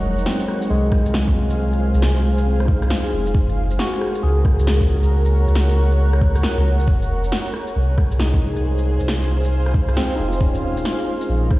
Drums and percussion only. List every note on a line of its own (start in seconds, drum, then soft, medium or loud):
0.18 shaker medium
0.26 snare loud
0.40 shaker soft
0.48 cross-stick medium
0.62 shaker medium
0.92 kick loud
0.92 cross-stick medium
1.06 shaker medium
1.14 snare loud
1.28 kick medium
1.50 shaker medium
1.72 shaker soft
1.94 shaker medium
2.02 snare loud
2.16 shaker soft
2.38 shaker medium
2.60 cross-stick medium
2.68 kick loud
2.82 cross-stick soft
2.82 shaker medium
2.90 snare loud
3.26 shaker medium
3.34 kick loud
3.49 shaker soft
3.71 shaker medium
3.79 snare loud
3.93 shaker soft
4.01 cross-stick soft
4.15 shaker medium
4.45 kick loud
4.45 cross-stick medium
4.59 shaker medium
4.67 snare loud
4.81 kick medium
5.03 shaker medium
5.25 shaker soft
5.48 shaker soft
5.55 snare loud
5.70 shaker soft
5.91 shaker medium
6.13 cross-stick medium
6.22 kick loud
6.35 cross-stick soft
6.35 shaker medium
6.43 snare loud
6.80 shaker medium
6.88 kick loud
7.02 shaker soft
7.24 shaker soft
7.32 snare loud
7.46 shaker soft
7.54 cross-stick soft
7.68 shaker soft
7.98 kick loud
7.98 cross-stick medium
8.12 shaker soft
8.20 snare loud
8.34 kick medium
8.56 shaker medium
8.78 shaker soft
9.00 shaker soft
9.08 snare loud
9.22 shaker soft
9.45 shaker medium
9.66 cross-stick medium
9.74 kick loud
9.89 cross-stick soft
9.89 shaker soft
9.97 snare loud
10.33 shaker soft
10.41 kick loud
10.55 shaker soft
10.77 shaker medium
10.85 snare medium
10.99 shaker soft
11.21 shaker medium
11.51 kick loud
11.51 cross-stick medium